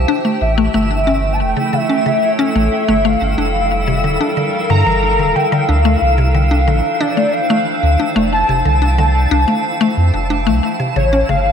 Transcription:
Already playing: synth texture E3 E6, ambient pad G4 C5 G5 A5
0.08 synth arpeggio sound D4
0.25 synth arpeggio sound A3
0.41 sub bass A1, ambient pad A3, soft synth lead E5
0.58 synth arpeggio sound A3
0.74 sub bass G1, synth arpeggio sound A3
0.83 ambient pad A4
1.07 synth arpeggio sound C#4
1.33 soft synth lead A5
1.40 sub bass E1, soft synth lead G5
1.57 synth arpeggio sound C#3, ambient pad C#5
1.73 synth arpeggio sound C#3, soft synth lead E5
1.90 synth arpeggio sound C#4
2.06 synth arpeggio sound C#3
2.39 synth arpeggio sound C#4
2.56 sub bass A1, synth arpeggio sound A3
2.72 soft synth lead E5
2.89 sub bass G1, synth arpeggio sound A3
3.05 ambient pad G3, synth arpeggio sound A3, soft synth lead F5
3.22 sub bass G1
3.38 sub bass F1, synth arpeggio sound D4
3.59 ambient pad F5
3.66 ambient pad A#4
3.88 synth arpeggio sound C3
4.04 sub bass D1, synth arpeggio sound D3
4.21 synth arpeggio sound D4
4.37 synth arpeggio sound D3
4.70 sub bass G2, synth arpeggio sound D3, soft synth lead A#5
4.86 sub bass G1, synth arpeggio sound E3
5.19 sub bass D1, synth arpeggio sound D3
5.35 synth arpeggio sound D3, soft synth lead G5
5.52 synth arpeggio sound D3
5.68 sub bass D2, synth arpeggio sound D4, ambient pad D4, soft synth lead F5
5.85 synth arpeggio sound A3
6.02 sub bass C2
6.18 synth arpeggio sound C3
6.28 ambient pad C5
6.35 synth arpeggio sound D3
6.51 synth arpeggio sound D4
6.68 sub bass A1, synth arpeggio sound D3
6.88 ambient pad F5
7.00 synth arpeggio sound D4, soft synth lead D5
7.17 synth arpeggio sound A3
7.33 soft synth lead F5
7.50 synth arpeggio sound A3
7.83 sub bass D2
8.00 synth arpeggio sound D4
8.16 sub bass F1, synth arpeggio sound A3
8.32 ambient pad F5, soft synth lead A5
8.49 sub bass F1, synth arpeggio sound C3
8.65 sub bass C2, synth arpeggio sound D3, soft synth lead A5
8.82 synth arpeggio sound D4
8.98 synth arpeggio sound D3
9.31 sub bass C2, synth arpeggio sound D4
9.48 synth arpeggio sound A3, ambient pad A5
9.81 synth arpeggio sound A3
9.97 sub bass F2
10.14 sub bass F1
10.30 synth arpeggio sound D4
10.47 sub bass C2, synth arpeggio sound A3
10.80 synth arpeggio sound C3
10.96 sub bass A1, synth arpeggio sound C#3, ambient pad A3, soft synth lead C#5
11.13 synth arpeggio sound C#4, ambient pad A4
11.29 sub bass G1, synth arpeggio sound C#3, soft synth lead F5

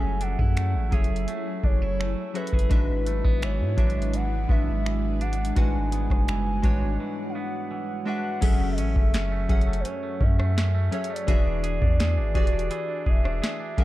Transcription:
Already playing: 808-style bass F#1, synth keys F#3 C#4 G#4 A4 E5, ambient pad F#3 E4 G#5, clean electric guitar F#3 A4, soft synth lead G#5
0.21 clean electric guitar D4, soft synth lead F#5, closed hi-hat
0.39 808-style bass F#2, clean electric guitar E4, kick
0.57 clean electric guitar A3, finger snap, closed hi-hat
0.75 808-style bass A1
0.91 808-style bass F#1, synth keys F#3 C#4 G#4 A4 C#5, clean electric guitar G#4, soft synth lead E5, kick, closed hi-hat
1.04 closed hi-hat
1.16 closed hi-hat
1.28 clean electric guitar A3, closed hi-hat
1.64 808-style bass F#1, clean electric guitar D4, soft synth lead C#5, kick
1.82 clean electric guitar E4
2.00 clean electric guitar A3, finger snap
2.34 synth keys F#3 C#4 G#4 A4 E5, clean electric guitar F#4, soft synth lead B4, closed hi-hat
2.47 closed hi-hat
2.53 808-style bass F#1, clean electric guitar G#4, kick
2.59 closed hi-hat
2.69 808-style bass G#1, clean electric guitar G#2, synth keys G#3 D4 F#4 B4 E5, ambient pad G#3 D4, kick, closed hi-hat
3.06 clean electric guitar A3, closed hi-hat
3.24 808-style bass G#1, clean electric guitar B3, kick
3.42 clean electric guitar E3, soft synth lead C#5, finger snap, closed hi-hat
3.60 808-style bass G#2
3.77 808-style bass G#1, synth keys F#3 D4 F#4 B4 E5, clean electric guitar D4, kick, closed hi-hat
3.83 synth keys G#3
3.90 closed hi-hat
4.02 closed hi-hat
4.13 clean electric guitar E3, soft synth lead F#5, closed hi-hat
4.48 808-style bass G#1, synth keys G#3 D4 F#4 B4 E5, clean electric guitar B3, soft synth lead E5, kick
4.85 clean electric guitar E3, finger snap
5.21 clean electric guitar D4, soft synth lead F#5, closed hi-hat
5.33 closed hi-hat
5.45 closed hi-hat
5.55 808-style bass G#1, clean electric guitar G#2, synth keys G3 D4 F#4 B4 F#5, ambient pad F#4, soft synth lead G#5, kick, closed hi-hat
5.61 synth keys G#3
5.92 clean electric guitar B3, closed hi-hat
6.10 808-style bass F#1, kick, cross-stick
6.28 clean electric guitar E3, finger snap, closed hi-hat
6.62 808-style bass G#1, synth keys G#3 D4 F#4 B4 C#5, clean electric guitar D4, kick, closed hi-hat
7.00 clean electric guitar E3
7.30 soft synth lead F5
7.35 clean electric guitar B3, soft synth lead F#5
7.71 clean electric guitar E3, soft synth lead F#5
8.05 synth keys G#3 D4 F#4 B4 E5, clean electric guitar D4, soft synth lead F#5
8.41 808-style bass F#1, clean electric guitar F#2 C#4, synth keys F#3 C#4 G#4 A4 E5, kick, closed hi-hat, crash
8.60 clean electric guitar A3
8.72 soft synth lead D#5
8.78 808-style bass A1, clean electric guitar C#4, soft synth lead E5, closed hi-hat
8.96 808-style bass F#1, clean electric guitar A3, kick
9.14 clean electric guitar C#4, snare, closed hi-hat
9.32 clean electric guitar A3
9.48 808-style bass F#1, synth keys F#3 C#4 G#4 A4 F#5, clean electric guitar C#4, soft synth lead E5, kick, closed hi-hat
9.61 closed hi-hat
9.67 clean electric guitar A3
9.73 closed hi-hat
9.80 soft synth lead C5
9.85 clean electric guitar F#2 C#4, soft synth lead C#5, closed hi-hat
10.03 clean electric guitar A3
10.21 808-style bass F#2, clean electric guitar C#4, soft synth lead E5, kick
10.39 clean electric guitar A3, cross-stick
10.56 clean electric guitar C#4, snare
10.74 clean electric guitar A3
10.91 synth keys F#3 C#4 G#4 A4 C#5, clean electric guitar C#4, soft synth lead E5, closed hi-hat
11.04 closed hi-hat
11.10 clean electric guitar A3, soft synth lead D5
11.16 closed hi-hat
11.27 808-style bass E1, synth keys E3 D4 F#4 G#4 E5, clean electric guitar E3 G#4, kick, closed hi-hat
11.46 clean electric guitar D4
11.64 clean electric guitar G#4, closed hi-hat
11.81 808-style bass E2, clean electric guitar D4, kick
11.99 clean electric guitar G#4, snare, closed hi-hat
12.17 808-style bass G#1, clean electric guitar D4
12.34 808-style bass E1, synth keys E3 D4 F#4 G4 D5, clean electric guitar G#4, kick, closed hi-hat
12.42 synth keys G#4
12.47 closed hi-hat
12.53 clean electric guitar D4
12.59 closed hi-hat
12.71 clean electric guitar E3 G#4, closed hi-hat
12.88 clean electric guitar D4
13.06 808-style bass E1, clean electric guitar G#4, soft synth lead E5, kick
13.24 clean electric guitar D4, cross-stick
13.42 clean electric guitar G#4, snare
13.60 clean electric guitar D4
13.77 808-style bass F#1, clean electric guitar F#2, synth keys F#3 C#4 G#4 A#4 E5, soft synth lead F#5, kick, closed hi-hat

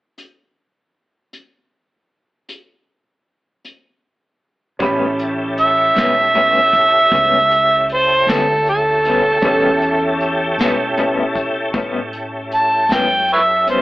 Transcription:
0.18 closed hi-hat
1.33 closed hi-hat
2.49 closed hi-hat
3.65 closed hi-hat
4.79 upright bass A1, clean electric guitar A2 G3 B3 C#4, upright piano C#4 G4 B5, tonewheel organ C#4 E4 G4 A4, kick, closed hi-hat
5.19 closed hi-hat
5.57 harmonica E5, closed hi-hat
5.95 upright bass B1, clean electric guitar G3 B3 C#4, snare, closed hi-hat
6.35 clean electric guitar A2 G3 B3 C#4, closed hi-hat
6.73 kick, closed hi-hat
7.12 upright bass C#2, clean electric guitar A2 G3 B3 C#4, kick, closed hi-hat
7.51 closed hi-hat
7.89 closed hi-hat
7.94 harmonica C5
8.27 upright bass D2, clean electric guitar G3 B3 C#4, harmonica A4, snare, closed hi-hat
8.66 harmonica A4, closed hi-hat
9.05 clean electric guitar G3 B3 C#4, closed hi-hat
9.41 upright bass E2, clean electric guitar A2 G3 B3, upright piano C#4 G4 A4, tonewheel organ C#4 E4 G4 A4, kick, closed hi-hat
9.46 clean electric guitar C#4
9.82 closed hi-hat
10.20 closed hi-hat
10.58 upright bass B2, clean electric guitar B3 C#4, snare, closed hi-hat
10.62 clean electric guitar G3
10.97 clean electric guitar A2 G3 B3 C#4, closed hi-hat
11.35 kick, closed hi-hat
11.74 clean electric guitar A2 G3 B3 C#4, upright bass A2, kick, closed hi-hat
12.13 closed hi-hat
12.52 harmonica A5, closed hi-hat
12.89 upright bass F#2, clean electric guitar G3 B3 C#4, harmonica G5, snare, closed hi-hat
13.28 closed hi-hat
13.33 harmonica B4 C#5 E5
13.67 clean electric guitar G3 B3 C#4, harmonica C5, closed hi-hat

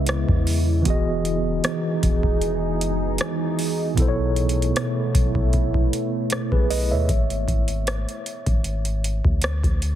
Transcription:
Already playing: 808-style bass C#2, tine electric piano C#3 G#3 E4 B4 D#5, ambient pad C#3 B3 E4
0.07 cross-stick, closed hi-hat
0.29 808-style bass E2, kick
0.47 open hi-hat
0.82 808-style bass E1, tine electric piano E3 B3 F#4, ambient pad E3 D#4 G#4, kick, closed hi-hat
0.88 tine electric piano G#4 D#5
1.25 closed hi-hat
1.64 cross-stick, closed hi-hat
2.03 808-style bass E1, kick, closed hi-hat
2.23 kick
2.42 closed hi-hat
2.81 808-style bass F#1, closed hi-hat
3.18 cross-stick, closed hi-hat
3.59 open hi-hat
3.94 808-style bass B1, tine electric piano B2 B3 E4, ambient pad A3 B3 E4, kick, closed hi-hat
4.00 tine electric piano A4 C5
4.08 tine electric piano C#5
4.36 closed hi-hat
4.49 closed hi-hat
4.62 closed hi-hat
4.76 cross-stick, closed hi-hat
5.15 808-style bass B1, kick, closed hi-hat
5.35 kick
5.53 kick, closed hi-hat
5.74 kick
5.93 closed hi-hat
6.30 cross-stick, closed hi-hat
6.52 808-style bass B1, tine electric piano G#4 B4, kick
6.70 tine electric piano B4 D#5, open hi-hat
6.91 808-style bass D#2, tine electric piano C#5 E5
7.09 808-style bass G#1, kick, closed hi-hat
7.30 closed hi-hat
7.48 808-style bass G#1, kick, closed hi-hat
7.68 closed hi-hat
7.87 cross-stick, closed hi-hat
8.09 closed hi-hat
8.26 closed hi-hat
8.46 808-style bass G#1, kick, closed hi-hat
8.64 closed hi-hat
8.85 closed hi-hat
9.04 closed hi-hat
9.25 808-style bass D2, kick
9.42 cross-stick, closed hi-hat
9.64 808-style bass D2, kick, closed hi-hat
9.82 closed hi-hat

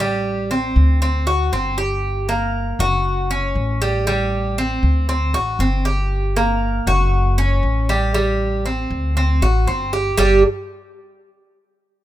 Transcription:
Already playing: upright bass A1
0.00 cuban tres G3
0.51 cuban tres C4
0.76 upright bass D2
1.02 cuban tres C4
1.27 cuban tres F#4
1.52 upright bass G1, cuban tres C4
1.78 cuban tres G4
2.29 cuban tres A#3
2.79 upright bass F#1, cuban tres F#4
3.31 cuban tres C#4
3.55 upright bass A1
3.82 cuban tres G3
4.07 cuban tres G3
4.58 cuban tres C4
4.83 upright bass D2
5.09 cuban tres C4
5.34 upright bass A1, cuban tres F#4
5.59 upright bass G1, cuban tres C4
5.85 cuban tres G4
6.37 cuban tres A#3
6.87 upright bass F#1, cuban tres F#4
7.38 cuban tres C#4
7.63 upright bass A1
7.89 cuban tres G3
8.14 cuban tres G3
8.66 cuban tres C4
8.91 upright bass D2
9.17 cuban tres C4
9.41 upright bass A1, cuban tres F#4
9.67 upright bass G1, cuban tres C4
9.93 cuban tres G4
10.17 upright bass G1, cuban tres G3 D4 G4

